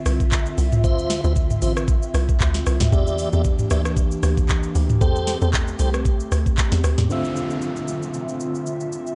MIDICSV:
0, 0, Header, 1, 7, 480
1, 0, Start_track
1, 0, Key_signature, -1, "minor"
1, 0, Tempo, 521739
1, 772, Time_signature, 4, 2, 24, 8
1, 8418, End_track
2, 0, Start_track
2, 0, Title_t, "Tonewheel organ"
2, 0, Program_c, 0, 16
2, 771, Note_on_c, 0, 65, 84
2, 773, Note_on_c, 0, 72, 83
2, 776, Note_on_c, 0, 76, 97
2, 1112, Note_off_c, 0, 65, 0
2, 1113, Note_off_c, 0, 72, 0
2, 1114, Note_off_c, 0, 76, 0
2, 1141, Note_on_c, 0, 65, 76
2, 1144, Note_on_c, 0, 72, 72
2, 1147, Note_on_c, 0, 76, 83
2, 1223, Note_off_c, 0, 65, 0
2, 1224, Note_off_c, 0, 72, 0
2, 1226, Note_off_c, 0, 76, 0
2, 1489, Note_on_c, 0, 65, 77
2, 1492, Note_on_c, 0, 72, 69
2, 1495, Note_on_c, 0, 76, 85
2, 1589, Note_off_c, 0, 65, 0
2, 1590, Note_off_c, 0, 72, 0
2, 1591, Note_off_c, 0, 76, 0
2, 2689, Note_on_c, 0, 67, 89
2, 2691, Note_on_c, 0, 74, 83
2, 2693, Note_on_c, 0, 76, 99
2, 3031, Note_off_c, 0, 67, 0
2, 3032, Note_off_c, 0, 74, 0
2, 3033, Note_off_c, 0, 76, 0
2, 3062, Note_on_c, 0, 67, 76
2, 3064, Note_on_c, 0, 74, 69
2, 3067, Note_on_c, 0, 76, 86
2, 3143, Note_off_c, 0, 67, 0
2, 3144, Note_off_c, 0, 74, 0
2, 3146, Note_off_c, 0, 76, 0
2, 3409, Note_on_c, 0, 67, 78
2, 3412, Note_on_c, 0, 74, 72
2, 3416, Note_on_c, 0, 76, 85
2, 3509, Note_off_c, 0, 67, 0
2, 3510, Note_off_c, 0, 74, 0
2, 3512, Note_off_c, 0, 76, 0
2, 4609, Note_on_c, 0, 69, 92
2, 4611, Note_on_c, 0, 72, 81
2, 4614, Note_on_c, 0, 79, 96
2, 4951, Note_off_c, 0, 69, 0
2, 4952, Note_off_c, 0, 72, 0
2, 4953, Note_off_c, 0, 79, 0
2, 4982, Note_on_c, 0, 69, 72
2, 4984, Note_on_c, 0, 72, 68
2, 4987, Note_on_c, 0, 79, 81
2, 5063, Note_off_c, 0, 69, 0
2, 5064, Note_off_c, 0, 72, 0
2, 5066, Note_off_c, 0, 79, 0
2, 5327, Note_on_c, 0, 69, 78
2, 5331, Note_on_c, 0, 72, 71
2, 5333, Note_on_c, 0, 79, 81
2, 5428, Note_off_c, 0, 69, 0
2, 5429, Note_off_c, 0, 72, 0
2, 5430, Note_off_c, 0, 79, 0
2, 8418, End_track
3, 0, Start_track
3, 0, Title_t, "Analog synth pad"
3, 0, Program_c, 1, 89
3, 0, Note_on_c, 1, 50, 82
3, 0, Note_on_c, 1, 60, 76
3, 0, Note_on_c, 1, 65, 88
3, 0, Note_on_c, 1, 76, 76
3, 2655, Note_off_c, 1, 65, 0
3, 2656, Note_off_c, 1, 50, 0
3, 2656, Note_off_c, 1, 60, 0
3, 2656, Note_off_c, 1, 76, 0
3, 2695, Note_on_c, 1, 67, 89
3, 2696, Note_on_c, 1, 52, 83
3, 2696, Note_on_c, 1, 58, 76
3, 2696, Note_on_c, 1, 62, 75
3, 4595, Note_off_c, 1, 52, 0
3, 4595, Note_off_c, 1, 58, 0
3, 4595, Note_off_c, 1, 62, 0
3, 4615, Note_on_c, 1, 57, 81
3, 4615, Note_on_c, 1, 60, 78
3, 6497, Note_off_c, 1, 67, 0
3, 6514, Note_off_c, 1, 57, 0
3, 6514, Note_off_c, 1, 60, 0
3, 6530, Note_on_c, 1, 50, 76
3, 6530, Note_on_c, 1, 65, 88
3, 6530, Note_on_c, 1, 76, 73
3, 6531, Note_on_c, 1, 60, 71
3, 8418, Note_off_c, 1, 50, 0
3, 8418, Note_off_c, 1, 60, 0
3, 8418, Note_off_c, 1, 65, 0
3, 8418, Note_off_c, 1, 76, 0
3, 8418, End_track
4, 0, Start_track
4, 0, Title_t, "Synth keys"
4, 0, Program_c, 2, 88
4, 6523, Note_on_c, 2, 50, 68
4, 6531, Note_on_c, 2, 57, 61
4, 6538, Note_on_c, 2, 60, 62
4, 6544, Note_on_c, 2, 65, 62
4, 6553, Note_on_c, 2, 76, 74
4, 6682, Control_c, 2, 64, 127
4, 8411, Note_off_c, 2, 50, 0
4, 8415, Note_off_c, 2, 57, 0
4, 8418, Note_off_c, 2, 60, 0
4, 8418, Note_off_c, 2, 65, 0
4, 8418, Note_off_c, 2, 76, 0
4, 8418, End_track
5, 0, Start_track
5, 0, Title_t, "Log drum bass"
5, 0, Program_c, 3, 39
5, 53, Note_on_c, 3, 36, 86
5, 469, Note_off_c, 3, 36, 0
5, 533, Note_on_c, 3, 36, 96
5, 774, Note_on_c, 3, 38, 115
5, 787, Note_off_c, 3, 36, 0
5, 1096, Note_off_c, 3, 38, 0
5, 1143, Note_on_c, 3, 38, 107
5, 1446, Note_off_c, 3, 38, 0
5, 1491, Note_on_c, 3, 33, 87
5, 1908, Note_off_c, 3, 33, 0
5, 1970, Note_on_c, 3, 36, 95
5, 2179, Note_off_c, 3, 36, 0
5, 2213, Note_on_c, 3, 38, 103
5, 2421, Note_off_c, 3, 38, 0
5, 2453, Note_on_c, 3, 36, 88
5, 2567, Note_off_c, 3, 36, 0
5, 2584, Note_on_c, 3, 38, 84
5, 2678, Note_off_c, 3, 38, 0
5, 2691, Note_on_c, 3, 40, 112
5, 3015, Note_off_c, 3, 40, 0
5, 3065, Note_on_c, 3, 40, 98
5, 3367, Note_off_c, 3, 40, 0
5, 3412, Note_on_c, 3, 38, 90
5, 3829, Note_off_c, 3, 38, 0
5, 3892, Note_on_c, 3, 38, 97
5, 4309, Note_off_c, 3, 38, 0
5, 4373, Note_on_c, 3, 38, 99
5, 4581, Note_off_c, 3, 38, 0
5, 4613, Note_on_c, 3, 40, 111
5, 4935, Note_off_c, 3, 40, 0
5, 4984, Note_on_c, 3, 40, 103
5, 5286, Note_off_c, 3, 40, 0
5, 5331, Note_on_c, 3, 36, 96
5, 5748, Note_off_c, 3, 36, 0
5, 5812, Note_on_c, 3, 38, 87
5, 6021, Note_off_c, 3, 38, 0
5, 6183, Note_on_c, 3, 40, 93
5, 6277, Note_off_c, 3, 40, 0
5, 6291, Note_on_c, 3, 38, 94
5, 6406, Note_off_c, 3, 38, 0
5, 6424, Note_on_c, 3, 40, 88
5, 6518, Note_off_c, 3, 40, 0
5, 8418, End_track
6, 0, Start_track
6, 0, Title_t, "Downlifter"
6, 0, Program_c, 4, 103
6, 6531, Note_on_c, 4, 60, 73
6, 8418, Note_off_c, 4, 60, 0
6, 8418, End_track
7, 0, Start_track
7, 0, Title_t, "Drums"
7, 52, Note_on_c, 9, 46, 54
7, 52, Note_on_c, 9, 82, 93
7, 54, Note_on_c, 9, 37, 97
7, 144, Note_off_c, 9, 46, 0
7, 144, Note_off_c, 9, 82, 0
7, 146, Note_off_c, 9, 37, 0
7, 185, Note_on_c, 9, 36, 86
7, 186, Note_on_c, 9, 82, 48
7, 277, Note_off_c, 9, 36, 0
7, 278, Note_off_c, 9, 82, 0
7, 292, Note_on_c, 9, 39, 98
7, 293, Note_on_c, 9, 82, 79
7, 294, Note_on_c, 9, 36, 92
7, 384, Note_off_c, 9, 39, 0
7, 385, Note_off_c, 9, 82, 0
7, 386, Note_off_c, 9, 36, 0
7, 423, Note_on_c, 9, 82, 53
7, 515, Note_off_c, 9, 82, 0
7, 533, Note_on_c, 9, 46, 53
7, 533, Note_on_c, 9, 82, 87
7, 625, Note_off_c, 9, 46, 0
7, 625, Note_off_c, 9, 82, 0
7, 664, Note_on_c, 9, 82, 52
7, 665, Note_on_c, 9, 45, 96
7, 756, Note_off_c, 9, 82, 0
7, 757, Note_off_c, 9, 45, 0
7, 773, Note_on_c, 9, 36, 115
7, 773, Note_on_c, 9, 82, 73
7, 865, Note_off_c, 9, 36, 0
7, 865, Note_off_c, 9, 82, 0
7, 907, Note_on_c, 9, 82, 60
7, 999, Note_off_c, 9, 82, 0
7, 1012, Note_on_c, 9, 38, 69
7, 1013, Note_on_c, 9, 46, 57
7, 1013, Note_on_c, 9, 82, 93
7, 1104, Note_off_c, 9, 38, 0
7, 1105, Note_off_c, 9, 46, 0
7, 1105, Note_off_c, 9, 82, 0
7, 1143, Note_on_c, 9, 82, 56
7, 1235, Note_off_c, 9, 82, 0
7, 1249, Note_on_c, 9, 82, 79
7, 1252, Note_on_c, 9, 36, 94
7, 1341, Note_off_c, 9, 82, 0
7, 1344, Note_off_c, 9, 36, 0
7, 1383, Note_on_c, 9, 45, 69
7, 1384, Note_on_c, 9, 82, 59
7, 1475, Note_off_c, 9, 45, 0
7, 1476, Note_off_c, 9, 82, 0
7, 1489, Note_on_c, 9, 46, 66
7, 1489, Note_on_c, 9, 82, 106
7, 1581, Note_off_c, 9, 46, 0
7, 1581, Note_off_c, 9, 82, 0
7, 1626, Note_on_c, 9, 37, 102
7, 1626, Note_on_c, 9, 82, 60
7, 1718, Note_off_c, 9, 37, 0
7, 1718, Note_off_c, 9, 82, 0
7, 1729, Note_on_c, 9, 36, 112
7, 1730, Note_on_c, 9, 82, 81
7, 1821, Note_off_c, 9, 36, 0
7, 1822, Note_off_c, 9, 82, 0
7, 1865, Note_on_c, 9, 82, 59
7, 1957, Note_off_c, 9, 82, 0
7, 1972, Note_on_c, 9, 46, 57
7, 1972, Note_on_c, 9, 82, 96
7, 1974, Note_on_c, 9, 37, 95
7, 2064, Note_off_c, 9, 46, 0
7, 2064, Note_off_c, 9, 82, 0
7, 2066, Note_off_c, 9, 37, 0
7, 2105, Note_on_c, 9, 36, 91
7, 2107, Note_on_c, 9, 82, 46
7, 2197, Note_off_c, 9, 36, 0
7, 2199, Note_off_c, 9, 82, 0
7, 2211, Note_on_c, 9, 39, 97
7, 2212, Note_on_c, 9, 82, 76
7, 2213, Note_on_c, 9, 36, 95
7, 2303, Note_off_c, 9, 39, 0
7, 2304, Note_off_c, 9, 82, 0
7, 2305, Note_off_c, 9, 36, 0
7, 2340, Note_on_c, 9, 38, 71
7, 2340, Note_on_c, 9, 82, 56
7, 2432, Note_off_c, 9, 38, 0
7, 2432, Note_off_c, 9, 82, 0
7, 2451, Note_on_c, 9, 46, 50
7, 2451, Note_on_c, 9, 82, 90
7, 2453, Note_on_c, 9, 37, 96
7, 2543, Note_off_c, 9, 46, 0
7, 2543, Note_off_c, 9, 82, 0
7, 2545, Note_off_c, 9, 37, 0
7, 2579, Note_on_c, 9, 38, 71
7, 2581, Note_on_c, 9, 82, 53
7, 2582, Note_on_c, 9, 45, 91
7, 2671, Note_off_c, 9, 38, 0
7, 2673, Note_off_c, 9, 82, 0
7, 2674, Note_off_c, 9, 45, 0
7, 2691, Note_on_c, 9, 36, 115
7, 2691, Note_on_c, 9, 82, 75
7, 2783, Note_off_c, 9, 36, 0
7, 2783, Note_off_c, 9, 82, 0
7, 2825, Note_on_c, 9, 82, 61
7, 2917, Note_off_c, 9, 82, 0
7, 2929, Note_on_c, 9, 46, 56
7, 2929, Note_on_c, 9, 82, 100
7, 3021, Note_off_c, 9, 46, 0
7, 3021, Note_off_c, 9, 82, 0
7, 3061, Note_on_c, 9, 82, 57
7, 3153, Note_off_c, 9, 82, 0
7, 3168, Note_on_c, 9, 82, 77
7, 3171, Note_on_c, 9, 36, 96
7, 3260, Note_off_c, 9, 82, 0
7, 3263, Note_off_c, 9, 36, 0
7, 3301, Note_on_c, 9, 45, 70
7, 3302, Note_on_c, 9, 82, 58
7, 3393, Note_off_c, 9, 45, 0
7, 3394, Note_off_c, 9, 82, 0
7, 3407, Note_on_c, 9, 46, 63
7, 3407, Note_on_c, 9, 82, 103
7, 3412, Note_on_c, 9, 37, 96
7, 3499, Note_off_c, 9, 46, 0
7, 3499, Note_off_c, 9, 82, 0
7, 3504, Note_off_c, 9, 37, 0
7, 3545, Note_on_c, 9, 37, 102
7, 3545, Note_on_c, 9, 82, 57
7, 3637, Note_off_c, 9, 37, 0
7, 3637, Note_off_c, 9, 82, 0
7, 3649, Note_on_c, 9, 36, 109
7, 3649, Note_on_c, 9, 82, 85
7, 3741, Note_off_c, 9, 36, 0
7, 3741, Note_off_c, 9, 82, 0
7, 3784, Note_on_c, 9, 82, 60
7, 3876, Note_off_c, 9, 82, 0
7, 3891, Note_on_c, 9, 46, 54
7, 3891, Note_on_c, 9, 82, 89
7, 3893, Note_on_c, 9, 37, 93
7, 3983, Note_off_c, 9, 46, 0
7, 3983, Note_off_c, 9, 82, 0
7, 3985, Note_off_c, 9, 37, 0
7, 4024, Note_on_c, 9, 36, 87
7, 4025, Note_on_c, 9, 82, 48
7, 4116, Note_off_c, 9, 36, 0
7, 4117, Note_off_c, 9, 82, 0
7, 4130, Note_on_c, 9, 39, 92
7, 4131, Note_on_c, 9, 82, 75
7, 4133, Note_on_c, 9, 36, 90
7, 4222, Note_off_c, 9, 39, 0
7, 4223, Note_off_c, 9, 82, 0
7, 4225, Note_off_c, 9, 36, 0
7, 4261, Note_on_c, 9, 82, 53
7, 4353, Note_off_c, 9, 82, 0
7, 4372, Note_on_c, 9, 46, 50
7, 4372, Note_on_c, 9, 82, 93
7, 4464, Note_off_c, 9, 46, 0
7, 4464, Note_off_c, 9, 82, 0
7, 4503, Note_on_c, 9, 82, 53
7, 4504, Note_on_c, 9, 45, 95
7, 4595, Note_off_c, 9, 82, 0
7, 4596, Note_off_c, 9, 45, 0
7, 4612, Note_on_c, 9, 36, 119
7, 4613, Note_on_c, 9, 82, 76
7, 4704, Note_off_c, 9, 36, 0
7, 4705, Note_off_c, 9, 82, 0
7, 4746, Note_on_c, 9, 82, 59
7, 4838, Note_off_c, 9, 82, 0
7, 4850, Note_on_c, 9, 38, 67
7, 4851, Note_on_c, 9, 46, 57
7, 4851, Note_on_c, 9, 82, 95
7, 4942, Note_off_c, 9, 38, 0
7, 4943, Note_off_c, 9, 46, 0
7, 4943, Note_off_c, 9, 82, 0
7, 4983, Note_on_c, 9, 82, 54
7, 5075, Note_off_c, 9, 82, 0
7, 5089, Note_on_c, 9, 82, 79
7, 5092, Note_on_c, 9, 36, 94
7, 5093, Note_on_c, 9, 39, 99
7, 5181, Note_off_c, 9, 82, 0
7, 5184, Note_off_c, 9, 36, 0
7, 5185, Note_off_c, 9, 39, 0
7, 5222, Note_on_c, 9, 82, 55
7, 5314, Note_off_c, 9, 82, 0
7, 5327, Note_on_c, 9, 46, 66
7, 5327, Note_on_c, 9, 82, 108
7, 5419, Note_off_c, 9, 46, 0
7, 5419, Note_off_c, 9, 82, 0
7, 5464, Note_on_c, 9, 82, 55
7, 5465, Note_on_c, 9, 37, 104
7, 5556, Note_off_c, 9, 82, 0
7, 5557, Note_off_c, 9, 37, 0
7, 5569, Note_on_c, 9, 36, 104
7, 5569, Note_on_c, 9, 82, 85
7, 5661, Note_off_c, 9, 36, 0
7, 5661, Note_off_c, 9, 82, 0
7, 5705, Note_on_c, 9, 82, 61
7, 5797, Note_off_c, 9, 82, 0
7, 5812, Note_on_c, 9, 46, 55
7, 5812, Note_on_c, 9, 82, 94
7, 5814, Note_on_c, 9, 37, 92
7, 5904, Note_off_c, 9, 46, 0
7, 5904, Note_off_c, 9, 82, 0
7, 5906, Note_off_c, 9, 37, 0
7, 5945, Note_on_c, 9, 36, 89
7, 5947, Note_on_c, 9, 82, 47
7, 6037, Note_off_c, 9, 36, 0
7, 6039, Note_off_c, 9, 82, 0
7, 6050, Note_on_c, 9, 39, 100
7, 6051, Note_on_c, 9, 82, 80
7, 6053, Note_on_c, 9, 36, 94
7, 6142, Note_off_c, 9, 39, 0
7, 6143, Note_off_c, 9, 82, 0
7, 6145, Note_off_c, 9, 36, 0
7, 6181, Note_on_c, 9, 38, 71
7, 6181, Note_on_c, 9, 82, 56
7, 6273, Note_off_c, 9, 38, 0
7, 6273, Note_off_c, 9, 82, 0
7, 6291, Note_on_c, 9, 46, 53
7, 6291, Note_on_c, 9, 82, 92
7, 6293, Note_on_c, 9, 37, 96
7, 6383, Note_off_c, 9, 46, 0
7, 6383, Note_off_c, 9, 82, 0
7, 6385, Note_off_c, 9, 37, 0
7, 6421, Note_on_c, 9, 38, 70
7, 6423, Note_on_c, 9, 82, 53
7, 6425, Note_on_c, 9, 45, 93
7, 6513, Note_off_c, 9, 38, 0
7, 6515, Note_off_c, 9, 82, 0
7, 6517, Note_off_c, 9, 45, 0
7, 6532, Note_on_c, 9, 82, 69
7, 6624, Note_off_c, 9, 82, 0
7, 6666, Note_on_c, 9, 82, 55
7, 6758, Note_off_c, 9, 82, 0
7, 6772, Note_on_c, 9, 82, 87
7, 6864, Note_off_c, 9, 82, 0
7, 6902, Note_on_c, 9, 82, 52
7, 6994, Note_off_c, 9, 82, 0
7, 7008, Note_on_c, 9, 82, 72
7, 7100, Note_off_c, 9, 82, 0
7, 7141, Note_on_c, 9, 82, 52
7, 7233, Note_off_c, 9, 82, 0
7, 7246, Note_on_c, 9, 82, 99
7, 7338, Note_off_c, 9, 82, 0
7, 7383, Note_on_c, 9, 82, 56
7, 7475, Note_off_c, 9, 82, 0
7, 7487, Note_on_c, 9, 82, 77
7, 7579, Note_off_c, 9, 82, 0
7, 7622, Note_on_c, 9, 82, 55
7, 7714, Note_off_c, 9, 82, 0
7, 7730, Note_on_c, 9, 82, 86
7, 7822, Note_off_c, 9, 82, 0
7, 7864, Note_on_c, 9, 82, 42
7, 7956, Note_off_c, 9, 82, 0
7, 7970, Note_on_c, 9, 82, 70
7, 8062, Note_off_c, 9, 82, 0
7, 8099, Note_on_c, 9, 82, 51
7, 8191, Note_off_c, 9, 82, 0
7, 8210, Note_on_c, 9, 82, 82
7, 8302, Note_off_c, 9, 82, 0
7, 8341, Note_on_c, 9, 82, 49
7, 8418, Note_off_c, 9, 82, 0
7, 8418, End_track
0, 0, End_of_file